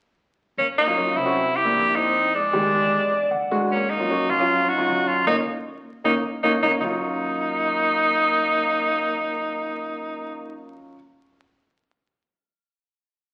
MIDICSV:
0, 0, Header, 1, 5, 480
1, 0, Start_track
1, 0, Key_signature, -6, "minor"
1, 0, Tempo, 391645
1, 699, Time_signature, 4, 2, 24, 8
1, 6938, Tempo, 387097
1, 16456, End_track
2, 0, Start_track
2, 0, Title_t, "Tenor saxophone"
2, 0, Program_c, 0, 66
2, 718, Note_on_c, 0, 61, 84
2, 821, Note_off_c, 0, 61, 0
2, 959, Note_on_c, 0, 63, 90
2, 1431, Note_on_c, 0, 64, 98
2, 1449, Note_off_c, 0, 63, 0
2, 1916, Note_on_c, 0, 67, 92
2, 1935, Note_off_c, 0, 64, 0
2, 2397, Note_on_c, 0, 63, 91
2, 2415, Note_off_c, 0, 67, 0
2, 2873, Note_on_c, 0, 62, 96
2, 2892, Note_off_c, 0, 63, 0
2, 4309, Note_off_c, 0, 62, 0
2, 4544, Note_on_c, 0, 61, 82
2, 4782, Note_on_c, 0, 63, 90
2, 4800, Note_off_c, 0, 61, 0
2, 5272, Note_on_c, 0, 65, 101
2, 5291, Note_off_c, 0, 63, 0
2, 5746, Note_on_c, 0, 66, 88
2, 5765, Note_off_c, 0, 65, 0
2, 6222, Note_on_c, 0, 65, 93
2, 6240, Note_off_c, 0, 66, 0
2, 6453, Note_off_c, 0, 65, 0
2, 6460, Note_on_c, 0, 63, 97
2, 6574, Note_off_c, 0, 63, 0
2, 7419, Note_on_c, 0, 63, 82
2, 7534, Note_off_c, 0, 63, 0
2, 7897, Note_on_c, 0, 63, 87
2, 8013, Note_off_c, 0, 63, 0
2, 8137, Note_on_c, 0, 63, 84
2, 8254, Note_off_c, 0, 63, 0
2, 8365, Note_on_c, 0, 63, 95
2, 13153, Note_off_c, 0, 63, 0
2, 16456, End_track
3, 0, Start_track
3, 0, Title_t, "Grand piano"
3, 0, Program_c, 1, 0
3, 1062, Note_on_c, 1, 54, 63
3, 1066, Note_on_c, 1, 61, 60
3, 1068, Note_on_c, 1, 65, 68
3, 1144, Note_off_c, 1, 54, 0
3, 1147, Note_off_c, 1, 61, 0
3, 1148, Note_off_c, 1, 65, 0
3, 1185, Note_on_c, 1, 61, 63
3, 1187, Note_on_c, 1, 54, 67
3, 1189, Note_on_c, 1, 65, 71
3, 1435, Note_off_c, 1, 54, 0
3, 1435, Note_off_c, 1, 61, 0
3, 1436, Note_off_c, 1, 65, 0
3, 1537, Note_on_c, 1, 66, 94
3, 1539, Note_on_c, 1, 61, 76
3, 1542, Note_on_c, 1, 54, 76
3, 1658, Note_off_c, 1, 66, 0
3, 1660, Note_off_c, 1, 61, 0
3, 1661, Note_off_c, 1, 54, 0
3, 2021, Note_on_c, 1, 58, 72
3, 2023, Note_on_c, 1, 62, 62
3, 2028, Note_on_c, 1, 64, 78
3, 2621, Note_off_c, 1, 58, 0
3, 2623, Note_off_c, 1, 62, 0
3, 2625, Note_off_c, 1, 64, 0
3, 3103, Note_on_c, 1, 51, 71
3, 3103, Note_on_c, 1, 56, 76
3, 3104, Note_on_c, 1, 67, 84
3, 3584, Note_off_c, 1, 51, 0
3, 3584, Note_off_c, 1, 56, 0
3, 3584, Note_off_c, 1, 67, 0
3, 3819, Note_on_c, 1, 74, 68
3, 4044, Note_off_c, 1, 74, 0
3, 4056, Note_on_c, 1, 78, 70
3, 4305, Note_on_c, 1, 62, 75
3, 4307, Note_on_c, 1, 56, 80
3, 4308, Note_on_c, 1, 66, 97
3, 4506, Note_off_c, 1, 78, 0
3, 4545, Note_off_c, 1, 62, 0
3, 4546, Note_off_c, 1, 56, 0
3, 4546, Note_off_c, 1, 66, 0
3, 4898, Note_on_c, 1, 61, 61
3, 4899, Note_on_c, 1, 54, 64
3, 4903, Note_on_c, 1, 65, 70
3, 4985, Note_off_c, 1, 54, 0
3, 4985, Note_off_c, 1, 61, 0
3, 4987, Note_off_c, 1, 65, 0
3, 5016, Note_on_c, 1, 54, 71
3, 5019, Note_on_c, 1, 66, 76
3, 5022, Note_on_c, 1, 61, 62
3, 5272, Note_off_c, 1, 54, 0
3, 5273, Note_off_c, 1, 66, 0
3, 5274, Note_off_c, 1, 61, 0
3, 5383, Note_on_c, 1, 54, 77
3, 5386, Note_on_c, 1, 65, 91
3, 5390, Note_on_c, 1, 61, 74
3, 5718, Note_off_c, 1, 54, 0
3, 5720, Note_off_c, 1, 65, 0
3, 5721, Note_off_c, 1, 61, 0
3, 5859, Note_on_c, 1, 61, 71
3, 5864, Note_on_c, 1, 54, 80
3, 5864, Note_on_c, 1, 65, 87
3, 6442, Note_off_c, 1, 61, 0
3, 6460, Note_off_c, 1, 54, 0
3, 6460, Note_off_c, 1, 65, 0
3, 6460, Note_on_c, 1, 58, 90
3, 6460, Note_on_c, 1, 61, 87
3, 6462, Note_on_c, 1, 63, 97
3, 6612, Note_off_c, 1, 58, 0
3, 6612, Note_off_c, 1, 61, 0
3, 6614, Note_off_c, 1, 63, 0
3, 7412, Note_on_c, 1, 61, 86
3, 7415, Note_on_c, 1, 58, 88
3, 7419, Note_on_c, 1, 63, 86
3, 7569, Note_off_c, 1, 61, 0
3, 7570, Note_off_c, 1, 58, 0
3, 7573, Note_off_c, 1, 63, 0
3, 7899, Note_on_c, 1, 61, 90
3, 7901, Note_on_c, 1, 58, 93
3, 7903, Note_on_c, 1, 63, 91
3, 8054, Note_off_c, 1, 58, 0
3, 8054, Note_off_c, 1, 61, 0
3, 8056, Note_off_c, 1, 63, 0
3, 8142, Note_on_c, 1, 58, 86
3, 8142, Note_on_c, 1, 61, 86
3, 8144, Note_on_c, 1, 63, 89
3, 8295, Note_off_c, 1, 58, 0
3, 8296, Note_off_c, 1, 61, 0
3, 8297, Note_off_c, 1, 63, 0
3, 8352, Note_on_c, 1, 54, 76
3, 8381, Note_on_c, 1, 61, 70
3, 8403, Note_on_c, 1, 65, 81
3, 13452, Note_off_c, 1, 54, 0
3, 13481, Note_off_c, 1, 61, 0
3, 13504, Note_off_c, 1, 65, 0
3, 16456, End_track
4, 0, Start_track
4, 0, Title_t, "Trombone"
4, 0, Program_c, 2, 57
4, 717, Note_on_c, 2, 58, 70
4, 821, Note_off_c, 2, 58, 0
4, 971, Note_on_c, 2, 58, 86
4, 1429, Note_on_c, 2, 60, 83
4, 1447, Note_off_c, 2, 58, 0
4, 1918, Note_on_c, 2, 64, 80
4, 1937, Note_off_c, 2, 60, 0
4, 2393, Note_on_c, 2, 60, 81
4, 2412, Note_off_c, 2, 64, 0
4, 2874, Note_on_c, 2, 56, 90
4, 2892, Note_off_c, 2, 60, 0
4, 4309, Note_off_c, 2, 56, 0
4, 4551, Note_on_c, 2, 58, 73
4, 4788, Note_off_c, 2, 58, 0
4, 4788, Note_on_c, 2, 58, 82
4, 5266, Note_on_c, 2, 61, 85
4, 5284, Note_off_c, 2, 58, 0
4, 5750, Note_on_c, 2, 63, 72
4, 5769, Note_off_c, 2, 61, 0
4, 6216, Note_on_c, 2, 61, 76
4, 6235, Note_off_c, 2, 63, 0
4, 6444, Note_off_c, 2, 61, 0
4, 6451, Note_on_c, 2, 58, 88
4, 6568, Note_off_c, 2, 58, 0
4, 7414, Note_on_c, 2, 58, 89
4, 7531, Note_off_c, 2, 58, 0
4, 7903, Note_on_c, 2, 58, 89
4, 8018, Note_off_c, 2, 58, 0
4, 8138, Note_on_c, 2, 58, 84
4, 8254, Note_off_c, 2, 58, 0
4, 8386, Note_on_c, 2, 58, 79
4, 13163, Note_off_c, 2, 58, 0
4, 16456, End_track
5, 0, Start_track
5, 0, Title_t, "Upright bass"
5, 0, Program_c, 3, 32
5, 704, Note_on_c, 3, 39, 82
5, 1373, Note_off_c, 3, 39, 0
5, 1421, Note_on_c, 3, 36, 82
5, 2092, Note_off_c, 3, 36, 0
5, 2141, Note_on_c, 3, 41, 87
5, 3270, Note_off_c, 3, 41, 0
5, 3342, Note_on_c, 3, 40, 87
5, 4014, Note_off_c, 3, 40, 0
5, 4057, Note_on_c, 3, 39, 79
5, 5187, Note_off_c, 3, 39, 0
5, 5264, Note_on_c, 3, 34, 85
5, 5933, Note_off_c, 3, 34, 0
5, 5981, Note_on_c, 3, 39, 89
5, 6425, Note_off_c, 3, 39, 0
5, 6458, Note_on_c, 3, 39, 92
5, 6636, Note_off_c, 3, 39, 0
5, 7419, Note_on_c, 3, 39, 95
5, 7598, Note_off_c, 3, 39, 0
5, 7899, Note_on_c, 3, 39, 84
5, 8079, Note_off_c, 3, 39, 0
5, 8137, Note_on_c, 3, 39, 88
5, 8318, Note_off_c, 3, 39, 0
5, 8377, Note_on_c, 3, 39, 88
5, 13477, Note_off_c, 3, 39, 0
5, 16456, End_track
0, 0, End_of_file